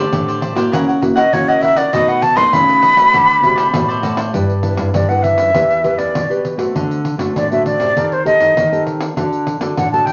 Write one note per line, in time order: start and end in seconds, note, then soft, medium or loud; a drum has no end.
0.00 0.52 A3 medium
0.00 0.52 C4 medium
0.00 0.27 G4 medium
0.00 0.52 G4 medium
0.00 0.26 C5 medium
0.00 0.26 D5 medium
0.12 0.69 A2 medium
0.12 0.38 D3 medium
0.12 pandeiro medium
0.28 0.41 G4 soft
0.28 0.41 C5 soft
0.28 0.42 D5 soft
0.28 pandeiro soft
0.41 0.55 D4 medium
0.41 0.56 G4 medium
0.41 0.56 C5 medium
0.41 0.54 D5 soft
0.41 pandeiro medium
0.56 0.97 A#3 medium
0.56 0.97 E4 medium
0.56 0.97 F#4 medium
0.56 0.72 G4 medium
0.56 0.71 C5 medium
0.56 0.70 D5 medium
0.56 pandeiro medium
0.72 1.30 C#3 soft
0.72 1.24 C#3 medium
0.72 0.86 E4 medium
0.72 0.86 A#4 medium
0.72 0.87 C#5 medium
0.72 0.86 F#5 medium
0.72 pandeiro medium
0.88 1.01 A#4 soft
0.88 1.01 C#5 soft
0.88 1.01 F#5 soft
0.88 pandeiro soft
1.01 1.20 A#3 medium
1.01 1.20 E4 medium
1.01 1.20 F#4 medium
1.01 muted cavaquinho stroke soft
1.01 pandeiro medium
1.16 1.47 A#4 medium
1.16 1.46 C#5 medium
1.16 1.35 D#5 medium
1.16 1.46 F#5 medium
1.16 pandeiro medium
1.33 1.90 C#3 soft
1.33 1.84 C#3 medium
1.33 1.88 A#3 medium
1.33 1.88 E4 medium
1.33 1.88 F#4 medium
1.33 1.50 C#5 medium
1.33 pandeiro medium
1.48 1.62 A#4 medium
1.48 1.63 C#5 medium
1.48 1.63 D#5 medium
1.48 1.62 F#5 medium
1.48 pandeiro soft
1.62 1.76 E4 medium
1.62 1.77 A#4 medium
1.62 1.76 C#5 medium
1.62 1.79 E5 loud
1.62 1.75 F#5 medium
1.62 pandeiro medium
1.76 1.92 A#4 soft
1.76 1.91 C#5 soft
1.76 1.94 D5 medium
1.76 1.91 F#5 medium
1.76 pandeiro medium
1.93 2.50 B2 medium
1.93 2.44 B2 loud
1.93 2.21 A3 medium
1.93 2.07 D#4 medium
1.93 2.22 D#4 medium
1.93 2.22 F#4 medium
1.93 2.07 A4 medium
1.93 2.08 B4 medium
1.93 2.10 D#5 medium
1.93 2.08 D#5 medium
1.93 pandeiro medium
2.08 2.21 A4 soft
2.08 2.22 B4 soft
2.08 2.22 D#5 soft
2.08 2.24 F#5 medium
2.08 pandeiro soft
2.22 2.38 A5 loud
2.22 muted cavaquinho stroke soft
2.22 pandeiro medium
2.35 2.93 A3 medium
2.35 2.93 D#4 medium
2.35 2.93 F#4 medium
2.35 2.67 A4 medium
2.35 2.66 B4 medium
2.35 2.66 D#5 medium
2.35 2.55 C6 loud
2.35 pandeiro medium
2.53 2.79 C#3 medium
2.53 3.10 F#3 medium
2.53 4.19 B5 loud
2.53 pandeiro medium
2.68 2.81 A4 soft
2.68 2.81 B4 soft
2.68 2.82 D#5 soft
2.68 pandeiro soft
2.81 2.96 D#4 soft
2.81 2.96 A4 medium
2.81 2.96 B4 medium
2.81 2.95 D#5 medium
2.81 pandeiro medium
2.96 3.38 A3 medium
2.96 3.38 C4 medium
2.96 3.38 F#4 medium
2.96 3.12 A4 medium
2.96 3.11 B4 medium
2.96 3.11 D#5 medium
2.96 pandeiro medium
3.12 3.70 D3 medium
3.12 3.39 D3 medium
3.12 3.27 F#4 medium
3.12 3.27 A4 medium
3.12 3.27 C5 medium
3.12 3.27 D5 medium
3.12 pandeiro medium
3.28 3.41 A4 soft
3.28 3.41 C5 soft
3.28 3.42 D5 medium
3.28 pandeiro soft
3.42 3.70 C3 medium
3.42 3.68 A3 medium
3.42 3.68 C4 medium
3.42 3.68 F#4 medium
3.42 muted cavaquinho stroke soft
3.42 pandeiro medium
3.56 3.87 A4 medium
3.56 3.87 C5 medium
3.56 3.86 D5 medium
3.56 pandeiro medium
3.73 4.31 A2 medium
3.73 4.01 B2 medium
3.73 4.29 A3 soft
3.73 4.29 F#4 medium
3.73 pandeiro medium
3.88 4.02 A4 medium
3.88 4.03 C5 medium
3.88 4.02 D5 medium
3.88 pandeiro soft
4.02 4.30 A2 medium
4.02 4.17 F#4 soft
4.02 4.17 A4 medium
4.02 4.17 C5 soft
4.02 4.16 D5 medium
4.02 pandeiro medium
4.17 4.33 A4 soft
4.17 4.32 C5 soft
4.17 4.32 D5 soft
4.17 pandeiro medium
4.33 4.72 G2 medium
4.33 4.91 G3 soft
4.33 4.51 D4 medium
4.33 4.51 E4 soft
4.33 4.52 B4 medium
4.33 pandeiro medium
4.50 pandeiro soft
4.63 5.04 D4 soft
4.63 5.04 E4 soft
4.63 5.04 B4 medium
4.63 pandeiro medium
4.77 4.91 G2 medium
4.77 pandeiro medium
4.94 5.33 G2 medium
4.94 5.51 D3 soft
4.94 5.10 D5 medium
4.94 pandeiro medium
5.09 5.50 D4 medium
5.09 5.50 E4 medium
5.09 5.50 B4 medium
5.09 5.24 F#5 medium
5.09 pandeiro soft
5.23 6.00 E5 medium
5.23 pandeiro medium
5.38 5.52 F#2 medium
5.38 pandeiro medium
5.54 5.93 E2 medium
5.54 6.11 E3 soft
5.54 5.80 D4 soft
5.54 5.80 G4 medium
5.54 5.80 B4 medium
5.54 pandeiro medium
5.70 pandeiro soft
5.83 6.12 D4 medium
5.83 6.13 G4 medium
5.83 6.13 B4 medium
5.83 pandeiro soft
5.98 6.12 E2 medium
5.98 6.44 D5 medium
5.98 pandeiro medium
6.14 6.72 B2 soft
6.14 6.66 B2 medium
6.14 pandeiro medium
6.29 6.55 D4 medium
6.29 6.55 G4 medium
6.29 6.55 B4 medium
6.29 pandeiro soft
6.45 pandeiro soft
6.57 6.99 A3 medium
6.57 6.99 C4 medium
6.57 7.00 F#4 medium
6.57 pandeiro medium
6.75 7.32 D3 soft
6.75 7.14 D3 medium
6.75 pandeiro medium
6.91 pandeiro soft
7.05 pandeiro medium
7.18 7.33 D3 medium
7.18 7.45 A3 medium
7.18 7.45 C4 medium
7.18 7.45 F#4 medium
7.18 pandeiro medium
7.36 7.93 A2 medium
7.36 7.74 D3 medium
7.36 7.50 D5 medium
7.36 pandeiro medium
7.51 7.91 A3 medium
7.51 7.91 C4 medium
7.51 7.92 F#4 medium
7.51 7.65 E5 medium
7.51 pandeiro soft
7.66 8.14 D5 medium
7.66 pandeiro medium
7.80 7.93 C3 medium
7.80 pandeiro medium
7.96 8.53 D#3 soft
7.96 8.35 D#3 medium
7.96 8.14 C4 soft
7.96 8.14 G4 medium
7.96 8.14 A4 soft
7.96 pandeiro medium
8.12 8.26 C5 medium
8.12 pandeiro soft
8.25 8.54 C4 medium
8.25 8.54 G4 medium
8.25 8.54 A4 medium
8.25 8.82 D#5 medium
8.25 pandeiro medium
8.40 8.54 D#3 medium
8.40 pandeiro medium
8.55 9.13 D#3 soft
8.55 9.08 D#3 medium
8.55 pandeiro medium
8.72 9.12 C4 medium
8.72 9.12 G4 medium
8.72 9.12 A4 medium
8.72 pandeiro soft
8.87 pandeiro medium
9.01 pandeiro medium
9.16 9.74 D3 soft
9.16 9.55 D3 medium
9.16 9.45 D4 medium
9.16 9.45 F#4 soft
9.16 9.45 A4 medium
9.16 pandeiro medium
9.33 pandeiro soft
9.47 pandeiro medium
9.60 9.74 D3 medium
9.60 9.86 D4 medium
9.60 9.87 F#4 medium
9.60 9.87 A4 medium
9.60 pandeiro medium
9.77 10.13 A2 medium
9.77 10.13 D3 medium
9.77 9.91 F#5 medium
9.77 pandeiro medium
9.92 10.13 D4 medium
9.92 10.13 F#4 medium
9.92 10.13 A4 medium
9.92 10.07 A5 medium
9.92 pandeiro soft
10.06 10.13 G5 medium
10.06 pandeiro medium